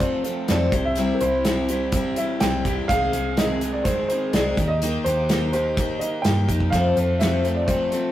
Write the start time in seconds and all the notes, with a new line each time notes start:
Already playing: F2 A3 F4
0.00 F3 C4 F4 A4 C5, kick, closed hi-hat
0.24 F3 C4 F4 A4 C5, closed hi-hat
0.48 F2 C3 F3 A3 C4 F4 A4 D5, snare, closed hi-hat
0.72 C2 C3 C4 E4 G4, kick, closed hi-hat
0.85 E5
0.96 C3 G3 C4 E4 G4, closed hi-hat
1.14 A#4
1.21 C2 C4 E4 G4 C5, closed hi-hat
1.45 C3 G3 C4 E4 G4, snare, closed hi-hat
1.69 G3 C4 E4 G4 C5, closed hi-hat
1.92 G3 C4 E4 G4, kick, closed hi-hat
2.16 E3 C4 E4 G4 E5, closed hi-hat
2.40 C2 C3 G3 C4 E4 G4 G5, snare, closed hi-hat
2.65 E4 G4, kick, closed hi-hat
2.69 C4
2.88 C2 C3 D#3 G#3 C4 F5, kick, closed hi-hat
2.92 G#4
3.13 C2 G#3 C4 G#4, closed hi-hat
3.37 C3 D#3 G#3 C4 G#4 D#5, snare, closed hi-hat
3.61 G#3 C4 G#4, closed hi-hat
3.73 D5
3.84 D#3 G#3 C4 G#4 C5, kick, closed hi-hat
4.08 D#3 G#3 C4 G#4 C5, closed hi-hat
4.33 C2 C3 D#3 G#3 C4 G#4 D5, snare, closed hi-hat
4.57 D#2 D#3 A#3 D#4 G4, kick, closed hi-hat
4.68 D#5
4.82 D#3 A#3 D#4 G4, closed hi-hat
5.04 D#2 A#3 D#4 G4 C5, closed hi-hat
5.29 D#3 A#3 D#4 G4, snare, closed hi-hat
5.53 A#3 D#4 G4 C5, closed hi-hat
5.77 D#3 A#3 D#4 G4, kick, closed hi-hat
5.99 D#3 D#4 G4 D#5, closed hi-hat
6.03 A#3
6.22 G2 D#3 A#3 D#4 G5, snare, closed hi-hat
6.26 G4
6.48 F2 A#3 D#4 G4, kick, closed hi-hat
6.60 kick
6.70 F2 C3 F3 A3 F5, kick, closed hi-hat
6.74 C4 A4
6.96 F2 F3 A3 C4 F4 A4, closed hi-hat
7.19 F2 C3 F3 A3 C4 A4 E5, snare, closed hi-hat
7.44 F3 A3 C4 A4, closed hi-hat
7.55 D5
7.66 F3 A3 C4 C5, kick, closed hi-hat
7.71 A4
7.90 C4 A4 C5, closed hi-hat
7.94 F3 A3